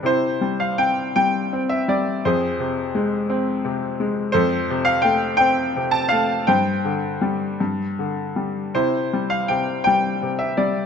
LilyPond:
<<
  \new Staff \with { instrumentName = "Grand piano" } { \time 6/8 \key c \major \tempo 4. = 55 << { c''8. f''16 g''8 g''8. e''16 d''8 | c''4. r4. | c''8. f''16 g''8 g''8. a''16 f''8 | g''4. r4. |
c''8. f''16 g''8 g''8. e''16 d''8 | } \\ { e'4. r4. | aes'4. r4. | a'4. r4. | c''4. r4. |
e'4. r4. | } >> }
  \new Staff \with { instrumentName = "Grand piano" } { \clef bass \time 6/8 \key c \major c8 g8 c'8 g8 c'8 g8 | f,8 c8 aes8 c'8 c8 aes8 | f,8 c8 a8 c'8 c8 a8 | g,8 d8 g8 g,8 d8 g8 |
c8 g8 c8 g8 c8 g8 | }
>>